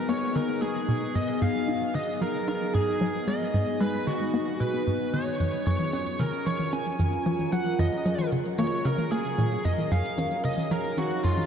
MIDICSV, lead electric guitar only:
0, 0, Header, 1, 2, 480
1, 0, Start_track
1, 0, Tempo, 530973
1, 1041, Time_signature, 4, 2, 24, 8
1, 10363, End_track
2, 0, Start_track
2, 0, Title_t, "Lead electric guitar"
2, 0, Program_c, 0, 29
2, 79, Note_on_c, 0, 73, 97
2, 321, Note_on_c, 0, 70, 89
2, 327, Note_off_c, 0, 73, 0
2, 558, Note_off_c, 0, 70, 0
2, 562, Note_on_c, 0, 68, 88
2, 1043, Note_on_c, 0, 75, 100
2, 1055, Note_off_c, 0, 68, 0
2, 1283, Note_on_c, 0, 77, 100
2, 1289, Note_off_c, 0, 75, 0
2, 1764, Note_on_c, 0, 75, 93
2, 1776, Note_off_c, 0, 77, 0
2, 2004, Note_on_c, 0, 70, 91
2, 2009, Note_off_c, 0, 75, 0
2, 2226, Note_off_c, 0, 70, 0
2, 2246, Note_on_c, 0, 70, 87
2, 2478, Note_off_c, 0, 70, 0
2, 2482, Note_on_c, 0, 68, 87
2, 2963, Note_on_c, 0, 75, 101
2, 2975, Note_off_c, 0, 68, 0
2, 3440, Note_on_c, 0, 71, 91
2, 3456, Note_off_c, 0, 75, 0
2, 3679, Note_on_c, 0, 66, 87
2, 3687, Note_off_c, 0, 71, 0
2, 4161, Note_on_c, 0, 71, 95
2, 4174, Note_off_c, 0, 66, 0
2, 4643, Note_on_c, 0, 73, 92
2, 4655, Note_off_c, 0, 71, 0
2, 5113, Note_off_c, 0, 73, 0
2, 5124, Note_on_c, 0, 73, 94
2, 5602, Note_on_c, 0, 70, 86
2, 5616, Note_off_c, 0, 73, 0
2, 5842, Note_on_c, 0, 73, 92
2, 5849, Note_off_c, 0, 70, 0
2, 6084, Note_on_c, 0, 80, 102
2, 6088, Note_off_c, 0, 73, 0
2, 6799, Note_off_c, 0, 80, 0
2, 6802, Note_on_c, 0, 78, 97
2, 7045, Note_on_c, 0, 75, 86
2, 7048, Note_off_c, 0, 78, 0
2, 7489, Note_off_c, 0, 75, 0
2, 7763, Note_on_c, 0, 73, 94
2, 8002, Note_on_c, 0, 70, 87
2, 8009, Note_off_c, 0, 73, 0
2, 8241, Note_off_c, 0, 70, 0
2, 8244, Note_on_c, 0, 68, 88
2, 8722, Note_on_c, 0, 75, 100
2, 8737, Note_off_c, 0, 68, 0
2, 8965, Note_on_c, 0, 77, 104
2, 8968, Note_off_c, 0, 75, 0
2, 9409, Note_off_c, 0, 77, 0
2, 9446, Note_on_c, 0, 75, 96
2, 9684, Note_on_c, 0, 70, 93
2, 9690, Note_off_c, 0, 75, 0
2, 9925, Note_on_c, 0, 66, 86
2, 9929, Note_off_c, 0, 70, 0
2, 10160, Note_off_c, 0, 66, 0
2, 10163, Note_on_c, 0, 65, 88
2, 10363, Note_off_c, 0, 65, 0
2, 10363, End_track
0, 0, End_of_file